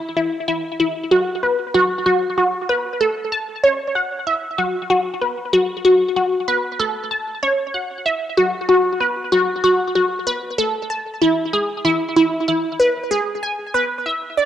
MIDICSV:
0, 0, Header, 1, 2, 480
1, 0, Start_track
1, 0, Key_signature, 3, "minor"
1, 0, Tempo, 631579
1, 844, Time_signature, 4, 2, 24, 8
1, 10984, End_track
2, 0, Start_track
2, 0, Title_t, "Synth arpeggio sound"
2, 0, Program_c, 0, 84
2, 126, Note_on_c, 0, 64, 69
2, 321, Note_off_c, 0, 64, 0
2, 365, Note_on_c, 0, 64, 72
2, 495, Note_off_c, 0, 64, 0
2, 607, Note_on_c, 0, 64, 73
2, 736, Note_off_c, 0, 64, 0
2, 846, Note_on_c, 0, 66, 99
2, 1041, Note_off_c, 0, 66, 0
2, 1087, Note_on_c, 0, 71, 74
2, 1216, Note_off_c, 0, 71, 0
2, 1326, Note_on_c, 0, 66, 104
2, 1455, Note_off_c, 0, 66, 0
2, 1566, Note_on_c, 0, 66, 98
2, 1696, Note_off_c, 0, 66, 0
2, 1806, Note_on_c, 0, 66, 82
2, 1936, Note_off_c, 0, 66, 0
2, 2046, Note_on_c, 0, 71, 94
2, 2123, Note_off_c, 0, 71, 0
2, 2285, Note_on_c, 0, 69, 95
2, 2415, Note_off_c, 0, 69, 0
2, 2524, Note_on_c, 0, 81, 74
2, 2655, Note_off_c, 0, 81, 0
2, 2763, Note_on_c, 0, 73, 97
2, 2842, Note_off_c, 0, 73, 0
2, 3004, Note_on_c, 0, 78, 74
2, 3135, Note_off_c, 0, 78, 0
2, 3244, Note_on_c, 0, 76, 102
2, 3440, Note_off_c, 0, 76, 0
2, 3483, Note_on_c, 0, 66, 94
2, 3614, Note_off_c, 0, 66, 0
2, 3723, Note_on_c, 0, 66, 98
2, 3920, Note_off_c, 0, 66, 0
2, 3962, Note_on_c, 0, 71, 72
2, 4094, Note_off_c, 0, 71, 0
2, 4203, Note_on_c, 0, 66, 96
2, 4334, Note_off_c, 0, 66, 0
2, 4444, Note_on_c, 0, 66, 99
2, 4574, Note_off_c, 0, 66, 0
2, 4684, Note_on_c, 0, 66, 82
2, 4815, Note_off_c, 0, 66, 0
2, 4924, Note_on_c, 0, 71, 98
2, 5002, Note_off_c, 0, 71, 0
2, 5164, Note_on_c, 0, 69, 106
2, 5295, Note_off_c, 0, 69, 0
2, 5403, Note_on_c, 0, 81, 74
2, 5534, Note_off_c, 0, 81, 0
2, 5645, Note_on_c, 0, 73, 95
2, 5723, Note_off_c, 0, 73, 0
2, 5884, Note_on_c, 0, 78, 75
2, 6014, Note_off_c, 0, 78, 0
2, 6123, Note_on_c, 0, 76, 93
2, 6319, Note_off_c, 0, 76, 0
2, 6364, Note_on_c, 0, 66, 98
2, 6495, Note_off_c, 0, 66, 0
2, 6603, Note_on_c, 0, 66, 100
2, 6799, Note_off_c, 0, 66, 0
2, 6843, Note_on_c, 0, 71, 77
2, 6974, Note_off_c, 0, 71, 0
2, 7083, Note_on_c, 0, 66, 104
2, 7214, Note_off_c, 0, 66, 0
2, 7324, Note_on_c, 0, 66, 99
2, 7455, Note_off_c, 0, 66, 0
2, 7565, Note_on_c, 0, 66, 82
2, 7695, Note_off_c, 0, 66, 0
2, 7803, Note_on_c, 0, 71, 92
2, 7882, Note_off_c, 0, 71, 0
2, 8043, Note_on_c, 0, 69, 99
2, 8174, Note_off_c, 0, 69, 0
2, 8284, Note_on_c, 0, 81, 79
2, 8415, Note_off_c, 0, 81, 0
2, 8524, Note_on_c, 0, 64, 100
2, 8720, Note_off_c, 0, 64, 0
2, 8764, Note_on_c, 0, 68, 77
2, 8895, Note_off_c, 0, 68, 0
2, 9004, Note_on_c, 0, 64, 104
2, 9134, Note_off_c, 0, 64, 0
2, 9245, Note_on_c, 0, 64, 102
2, 9375, Note_off_c, 0, 64, 0
2, 9485, Note_on_c, 0, 64, 79
2, 9615, Note_off_c, 0, 64, 0
2, 9726, Note_on_c, 0, 71, 98
2, 9803, Note_off_c, 0, 71, 0
2, 9964, Note_on_c, 0, 68, 98
2, 10095, Note_off_c, 0, 68, 0
2, 10205, Note_on_c, 0, 80, 78
2, 10335, Note_off_c, 0, 80, 0
2, 10445, Note_on_c, 0, 71, 101
2, 10523, Note_off_c, 0, 71, 0
2, 10686, Note_on_c, 0, 76, 72
2, 10816, Note_off_c, 0, 76, 0
2, 10925, Note_on_c, 0, 74, 105
2, 10984, Note_off_c, 0, 74, 0
2, 10984, End_track
0, 0, End_of_file